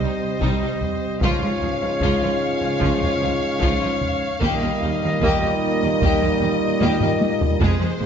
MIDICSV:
0, 0, Header, 1, 10, 480
1, 0, Start_track
1, 0, Tempo, 798935
1, 729, Time_signature, 4, 2, 24, 8
1, 4842, End_track
2, 0, Start_track
2, 0, Title_t, "Trumpet section"
2, 0, Program_c, 0, 61
2, 0, Note_on_c, 0, 75, 71
2, 705, Note_off_c, 0, 75, 0
2, 730, Note_on_c, 0, 73, 86
2, 2626, Note_off_c, 0, 73, 0
2, 2657, Note_on_c, 0, 75, 91
2, 4473, Note_off_c, 0, 75, 0
2, 4575, Note_on_c, 0, 72, 105
2, 4842, Note_off_c, 0, 72, 0
2, 4842, End_track
3, 0, Start_track
3, 0, Title_t, "Violin section"
3, 0, Program_c, 1, 48
3, 0, Note_on_c, 1, 72, 78
3, 706, Note_off_c, 1, 72, 0
3, 729, Note_on_c, 1, 77, 86
3, 3129, Note_off_c, 1, 77, 0
3, 3133, Note_on_c, 1, 75, 86
3, 4569, Note_on_c, 1, 72, 97
3, 4571, Note_off_c, 1, 75, 0
3, 4842, Note_off_c, 1, 72, 0
3, 4842, End_track
4, 0, Start_track
4, 0, Title_t, "Violin section"
4, 0, Program_c, 2, 48
4, 26, Note_on_c, 2, 63, 73
4, 70, Note_off_c, 2, 63, 0
4, 246, Note_on_c, 2, 63, 81
4, 359, Note_off_c, 2, 63, 0
4, 379, Note_on_c, 2, 63, 68
4, 425, Note_off_c, 2, 63, 0
4, 734, Note_on_c, 2, 65, 97
4, 840, Note_off_c, 2, 65, 0
4, 847, Note_on_c, 2, 65, 59
4, 896, Note_off_c, 2, 65, 0
4, 973, Note_on_c, 2, 65, 55
4, 1020, Note_off_c, 2, 65, 0
4, 1099, Note_on_c, 2, 65, 62
4, 1145, Note_off_c, 2, 65, 0
4, 1222, Note_on_c, 2, 65, 86
4, 1328, Note_off_c, 2, 65, 0
4, 1341, Note_on_c, 2, 65, 54
4, 1387, Note_off_c, 2, 65, 0
4, 1576, Note_on_c, 2, 65, 62
4, 1623, Note_off_c, 2, 65, 0
4, 1689, Note_on_c, 2, 65, 76
4, 1801, Note_off_c, 2, 65, 0
4, 1821, Note_on_c, 2, 65, 58
4, 1866, Note_off_c, 2, 65, 0
4, 1926, Note_on_c, 2, 65, 63
4, 1974, Note_off_c, 2, 65, 0
4, 2171, Note_on_c, 2, 65, 90
4, 2282, Note_off_c, 2, 65, 0
4, 2289, Note_on_c, 2, 65, 65
4, 2337, Note_off_c, 2, 65, 0
4, 2654, Note_on_c, 2, 67, 95
4, 2764, Note_off_c, 2, 67, 0
4, 2780, Note_on_c, 2, 67, 71
4, 2826, Note_off_c, 2, 67, 0
4, 2892, Note_on_c, 2, 67, 56
4, 2940, Note_off_c, 2, 67, 0
4, 3021, Note_on_c, 2, 67, 70
4, 3067, Note_off_c, 2, 67, 0
4, 3138, Note_on_c, 2, 67, 104
4, 3246, Note_off_c, 2, 67, 0
4, 3268, Note_on_c, 2, 67, 59
4, 3312, Note_off_c, 2, 67, 0
4, 3507, Note_on_c, 2, 67, 73
4, 3552, Note_off_c, 2, 67, 0
4, 3620, Note_on_c, 2, 67, 97
4, 3727, Note_off_c, 2, 67, 0
4, 3735, Note_on_c, 2, 67, 66
4, 3782, Note_off_c, 2, 67, 0
4, 3855, Note_on_c, 2, 67, 85
4, 3902, Note_off_c, 2, 67, 0
4, 4093, Note_on_c, 2, 67, 90
4, 4203, Note_off_c, 2, 67, 0
4, 4209, Note_on_c, 2, 67, 91
4, 4257, Note_off_c, 2, 67, 0
4, 4586, Note_on_c, 2, 68, 100
4, 4685, Note_off_c, 2, 68, 0
4, 4693, Note_on_c, 2, 68, 79
4, 4740, Note_off_c, 2, 68, 0
4, 4817, Note_on_c, 2, 68, 56
4, 4842, Note_off_c, 2, 68, 0
4, 4842, End_track
5, 0, Start_track
5, 0, Title_t, "French horn section"
5, 0, Program_c, 3, 60
5, 0, Note_on_c, 3, 60, 63
5, 0, Note_on_c, 3, 67, 70
5, 703, Note_off_c, 3, 67, 0
5, 704, Note_off_c, 3, 60, 0
5, 731, Note_on_c, 3, 65, 82
5, 733, Note_on_c, 3, 61, 85
5, 2554, Note_off_c, 3, 61, 0
5, 2554, Note_off_c, 3, 65, 0
5, 2656, Note_on_c, 3, 58, 95
5, 2657, Note_on_c, 3, 63, 90
5, 4548, Note_off_c, 3, 58, 0
5, 4549, Note_off_c, 3, 63, 0
5, 4573, Note_on_c, 3, 65, 111
5, 4576, Note_on_c, 3, 56, 117
5, 4842, Note_off_c, 3, 56, 0
5, 4842, Note_off_c, 3, 65, 0
5, 4842, End_track
6, 0, Start_track
6, 0, Title_t, "Viola section"
6, 0, Program_c, 4, 48
6, 19, Note_on_c, 4, 55, 60
6, 65, Note_off_c, 4, 55, 0
6, 250, Note_on_c, 4, 55, 75
6, 361, Note_off_c, 4, 55, 0
6, 375, Note_on_c, 4, 55, 63
6, 422, Note_off_c, 4, 55, 0
6, 735, Note_on_c, 4, 53, 89
6, 844, Note_off_c, 4, 53, 0
6, 858, Note_on_c, 4, 53, 65
6, 904, Note_off_c, 4, 53, 0
6, 973, Note_on_c, 4, 53, 60
6, 1020, Note_off_c, 4, 53, 0
6, 1093, Note_on_c, 4, 53, 54
6, 1140, Note_off_c, 4, 53, 0
6, 1207, Note_on_c, 4, 53, 82
6, 1320, Note_off_c, 4, 53, 0
6, 1328, Note_on_c, 4, 53, 61
6, 1376, Note_off_c, 4, 53, 0
6, 1558, Note_on_c, 4, 53, 57
6, 1606, Note_off_c, 4, 53, 0
6, 1678, Note_on_c, 4, 53, 87
6, 1787, Note_off_c, 4, 53, 0
6, 1794, Note_on_c, 4, 53, 60
6, 1842, Note_off_c, 4, 53, 0
6, 1930, Note_on_c, 4, 53, 67
6, 1978, Note_off_c, 4, 53, 0
6, 2159, Note_on_c, 4, 53, 71
6, 2270, Note_off_c, 4, 53, 0
6, 2277, Note_on_c, 4, 53, 73
6, 2325, Note_off_c, 4, 53, 0
6, 2644, Note_on_c, 4, 58, 102
6, 2758, Note_off_c, 4, 58, 0
6, 2774, Note_on_c, 4, 58, 71
6, 2821, Note_off_c, 4, 58, 0
6, 2885, Note_on_c, 4, 58, 61
6, 2934, Note_off_c, 4, 58, 0
6, 3006, Note_on_c, 4, 58, 64
6, 3054, Note_off_c, 4, 58, 0
6, 3132, Note_on_c, 4, 58, 111
6, 3242, Note_off_c, 4, 58, 0
6, 3254, Note_on_c, 4, 58, 69
6, 3301, Note_off_c, 4, 58, 0
6, 3491, Note_on_c, 4, 58, 72
6, 3539, Note_off_c, 4, 58, 0
6, 3607, Note_on_c, 4, 58, 96
6, 3720, Note_off_c, 4, 58, 0
6, 3731, Note_on_c, 4, 58, 71
6, 3779, Note_off_c, 4, 58, 0
6, 3849, Note_on_c, 4, 58, 71
6, 3897, Note_off_c, 4, 58, 0
6, 4087, Note_on_c, 4, 58, 97
6, 4200, Note_off_c, 4, 58, 0
6, 4212, Note_on_c, 4, 58, 81
6, 4260, Note_off_c, 4, 58, 0
6, 4569, Note_on_c, 4, 56, 108
6, 4680, Note_off_c, 4, 56, 0
6, 4690, Note_on_c, 4, 56, 78
6, 4738, Note_off_c, 4, 56, 0
6, 4802, Note_on_c, 4, 56, 61
6, 4842, Note_off_c, 4, 56, 0
6, 4842, End_track
7, 0, Start_track
7, 0, Title_t, "Trombone section"
7, 0, Program_c, 5, 61
7, 0, Note_on_c, 5, 48, 69
7, 0, Note_on_c, 5, 55, 67
7, 705, Note_off_c, 5, 48, 0
7, 727, Note_off_c, 5, 55, 0
7, 737, Note_on_c, 5, 44, 69
7, 737, Note_on_c, 5, 56, 76
7, 2551, Note_off_c, 5, 44, 0
7, 2551, Note_off_c, 5, 56, 0
7, 2653, Note_on_c, 5, 46, 84
7, 2657, Note_on_c, 5, 55, 89
7, 4547, Note_off_c, 5, 46, 0
7, 4569, Note_on_c, 5, 48, 103
7, 4572, Note_on_c, 5, 53, 94
7, 4573, Note_off_c, 5, 55, 0
7, 4842, Note_off_c, 5, 48, 0
7, 4842, Note_off_c, 5, 53, 0
7, 4842, End_track
8, 0, Start_track
8, 0, Title_t, "Cello section"
8, 0, Program_c, 6, 48
8, 10, Note_on_c, 6, 36, 66
8, 58, Note_off_c, 6, 36, 0
8, 254, Note_on_c, 6, 36, 77
8, 301, Note_off_c, 6, 36, 0
8, 369, Note_on_c, 6, 36, 52
8, 417, Note_off_c, 6, 36, 0
8, 728, Note_on_c, 6, 37, 87
8, 776, Note_off_c, 6, 37, 0
8, 856, Note_on_c, 6, 37, 66
8, 902, Note_off_c, 6, 37, 0
8, 974, Note_on_c, 6, 37, 65
8, 1021, Note_off_c, 6, 37, 0
8, 1096, Note_on_c, 6, 37, 61
8, 1143, Note_off_c, 6, 37, 0
8, 1217, Note_on_c, 6, 37, 91
8, 1263, Note_off_c, 6, 37, 0
8, 1337, Note_on_c, 6, 37, 67
8, 1384, Note_off_c, 6, 37, 0
8, 1574, Note_on_c, 6, 37, 64
8, 1621, Note_off_c, 6, 37, 0
8, 1697, Note_on_c, 6, 37, 84
8, 1744, Note_off_c, 6, 37, 0
8, 1826, Note_on_c, 6, 37, 68
8, 1871, Note_off_c, 6, 37, 0
8, 1953, Note_on_c, 6, 37, 66
8, 1996, Note_off_c, 6, 37, 0
8, 2180, Note_on_c, 6, 37, 92
8, 2226, Note_off_c, 6, 37, 0
8, 2303, Note_on_c, 6, 37, 65
8, 2348, Note_off_c, 6, 37, 0
8, 2661, Note_on_c, 6, 39, 93
8, 2707, Note_off_c, 6, 39, 0
8, 2780, Note_on_c, 6, 39, 68
8, 2826, Note_off_c, 6, 39, 0
8, 2899, Note_on_c, 6, 39, 78
8, 2945, Note_off_c, 6, 39, 0
8, 3021, Note_on_c, 6, 39, 76
8, 3066, Note_off_c, 6, 39, 0
8, 3130, Note_on_c, 6, 39, 104
8, 3178, Note_off_c, 6, 39, 0
8, 3254, Note_on_c, 6, 39, 80
8, 3301, Note_off_c, 6, 39, 0
8, 3498, Note_on_c, 6, 39, 69
8, 3544, Note_off_c, 6, 39, 0
8, 3620, Note_on_c, 6, 39, 93
8, 3666, Note_off_c, 6, 39, 0
8, 3733, Note_on_c, 6, 39, 78
8, 3780, Note_off_c, 6, 39, 0
8, 3856, Note_on_c, 6, 39, 84
8, 3903, Note_off_c, 6, 39, 0
8, 4091, Note_on_c, 6, 39, 86
8, 4138, Note_off_c, 6, 39, 0
8, 4210, Note_on_c, 6, 39, 67
8, 4258, Note_off_c, 6, 39, 0
8, 4566, Note_on_c, 6, 41, 116
8, 4614, Note_off_c, 6, 41, 0
8, 4686, Note_on_c, 6, 41, 73
8, 4734, Note_off_c, 6, 41, 0
8, 4811, Note_on_c, 6, 41, 88
8, 4842, Note_off_c, 6, 41, 0
8, 4842, End_track
9, 0, Start_track
9, 0, Title_t, "Double bass section"
9, 0, Program_c, 7, 48
9, 3, Note_on_c, 7, 36, 60
9, 52, Note_off_c, 7, 36, 0
9, 236, Note_on_c, 7, 36, 91
9, 284, Note_off_c, 7, 36, 0
9, 724, Note_on_c, 7, 37, 88
9, 772, Note_off_c, 7, 37, 0
9, 965, Note_on_c, 7, 37, 62
9, 1013, Note_off_c, 7, 37, 0
9, 1207, Note_on_c, 7, 37, 92
9, 1255, Note_off_c, 7, 37, 0
9, 1684, Note_on_c, 7, 37, 92
9, 1733, Note_off_c, 7, 37, 0
9, 1927, Note_on_c, 7, 37, 66
9, 1975, Note_off_c, 7, 37, 0
9, 2168, Note_on_c, 7, 37, 89
9, 2216, Note_off_c, 7, 37, 0
9, 2646, Note_on_c, 7, 39, 90
9, 2694, Note_off_c, 7, 39, 0
9, 2888, Note_on_c, 7, 39, 67
9, 2936, Note_off_c, 7, 39, 0
9, 3126, Note_on_c, 7, 39, 94
9, 3174, Note_off_c, 7, 39, 0
9, 3607, Note_on_c, 7, 39, 101
9, 3655, Note_off_c, 7, 39, 0
9, 3850, Note_on_c, 7, 39, 78
9, 3898, Note_off_c, 7, 39, 0
9, 4092, Note_on_c, 7, 39, 99
9, 4140, Note_off_c, 7, 39, 0
9, 4571, Note_on_c, 7, 29, 104
9, 4619, Note_off_c, 7, 29, 0
9, 4807, Note_on_c, 7, 29, 75
9, 4842, Note_off_c, 7, 29, 0
9, 4842, End_track
10, 0, Start_track
10, 0, Title_t, "Taiko and cinematic ensemble drums"
10, 249, Note_on_c, 9, 41, 84
10, 309, Note_off_c, 9, 41, 0
10, 491, Note_on_c, 9, 43, 62
10, 551, Note_off_c, 9, 43, 0
10, 728, Note_on_c, 9, 41, 94
10, 788, Note_off_c, 9, 41, 0
10, 1206, Note_on_c, 9, 41, 81
10, 1266, Note_off_c, 9, 41, 0
10, 1689, Note_on_c, 9, 41, 86
10, 1749, Note_off_c, 9, 41, 0
10, 1812, Note_on_c, 9, 43, 55
10, 1873, Note_off_c, 9, 43, 0
10, 2173, Note_on_c, 9, 41, 84
10, 2233, Note_off_c, 9, 41, 0
10, 2414, Note_on_c, 9, 43, 60
10, 2474, Note_off_c, 9, 43, 0
10, 2655, Note_on_c, 9, 41, 111
10, 2715, Note_off_c, 9, 41, 0
10, 3136, Note_on_c, 9, 41, 84
10, 3196, Note_off_c, 9, 41, 0
10, 3613, Note_on_c, 9, 41, 88
10, 3673, Note_off_c, 9, 41, 0
10, 3731, Note_on_c, 9, 43, 58
10, 3791, Note_off_c, 9, 43, 0
10, 4091, Note_on_c, 9, 48, 91
10, 4151, Note_off_c, 9, 48, 0
10, 4209, Note_on_c, 9, 45, 87
10, 4269, Note_off_c, 9, 45, 0
10, 4333, Note_on_c, 9, 48, 107
10, 4393, Note_off_c, 9, 48, 0
10, 4452, Note_on_c, 9, 43, 97
10, 4512, Note_off_c, 9, 43, 0
10, 4571, Note_on_c, 9, 41, 97
10, 4632, Note_off_c, 9, 41, 0
10, 4842, End_track
0, 0, End_of_file